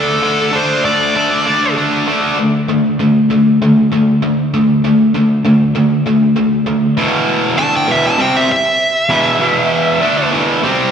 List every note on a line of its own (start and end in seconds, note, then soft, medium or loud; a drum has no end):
0.00 0.21 D3 medium
0.00 0.21 A3 medium
0.00 0.22 D4 medium
0.00 0.56 A4 medium
0.22 0.51 D3 medium
0.22 0.52 A3 medium
0.22 0.52 D4 medium
0.52 0.83 D3 medium
0.52 0.83 A3 medium
0.52 0.84 D4 loud
0.52 0.85 C5 medium
0.84 1.14 D3 medium
0.84 1.15 A3 medium
0.84 1.15 D4 medium
0.84 1.74 D5 medium
1.15 1.45 D3 medium
1.15 1.45 A3 medium
1.15 1.45 D4 medium
1.46 1.76 D3 medium
1.46 1.76 A3 medium
1.46 1.77 D4 loud
1.77 2.06 D3 medium
1.77 2.07 A3 medium
1.77 2.07 D4 medium
2.07 2.37 D3 loud
2.07 2.37 A3 medium
2.07 2.37 D4 medium
2.39 2.67 D3 medium
2.39 2.67 A3 medium
2.69 2.97 D3 medium
2.69 2.97 A3 medium
2.99 3.28 D3 medium
2.99 3.28 A3 medium
3.30 3.58 D3 medium
3.30 3.59 A3 medium
3.62 3.89 D3 medium
3.62 3.90 A3 medium
3.92 4.20 D3 medium
3.92 4.20 A3 medium
4.22 4.50 D3 medium
4.22 4.50 A3 medium
4.54 4.81 D3 medium
4.54 4.81 A3 medium
4.84 5.12 D3 medium
4.84 5.12 A3 medium
5.14 5.42 D3 medium
5.14 5.42 A3 medium
5.45 5.72 D3 medium
5.45 5.73 A3 medium
5.75 6.03 D3 medium
5.75 6.03 A3 medium
6.06 6.33 D3 medium
6.06 6.34 A3 medium
6.36 6.64 D3 medium
6.36 6.64 A3 medium
6.66 6.94 D3 medium
6.66 6.94 A3 medium
6.97 7.57 E2 loud
6.97 7.56 B2 loud
6.97 7.57 E3 loud
7.56 7.87 D3 loud
7.56 7.87 A3 loud
7.56 7.87 D4 loud
7.56 7.73 A5 loud
7.76 7.90 G5 medium
7.87 8.17 E2 medium
7.87 8.18 B2 loud
7.87 8.18 E3 loud
7.91 8.05 E5 medium
8.07 8.20 A5 medium
8.18 8.48 C3 loud
8.18 8.48 G3 loud
8.18 8.48 C4 loud
8.18 8.35 G5 medium
8.37 8.50 E5 medium
8.49 10.29 E5 medium
8.49 muted overdriven electric guitar stroke medium
9.09 9.39 E2 medium
9.09 9.39 B2 loud
9.09 9.40 E3 loud
9.40 10.00 E2 loud
9.40 10.00 B2 loud
9.40 10.01 E3 loud
10.01 10.31 D3 medium
10.01 10.31 A3 medium
10.01 10.31 D4 loud
10.31 10.61 E2 loud
10.31 10.62 B2 loud
10.31 10.62 E3 loud
10.63 10.91 C3 loud
10.63 10.91 G3 loud
10.63 10.91 C4 loud